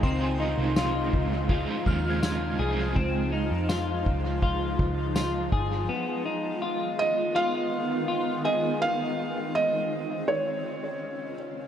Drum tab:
RD |xxxxxxxx|xxxxxxxx|--------|--------|
TB |--x---x-|--x---x-|--------|--------|
SD |--o---o-|--o---o-|--------|--------|
BD |o--ooo--|o--ooo-o|--------|--------|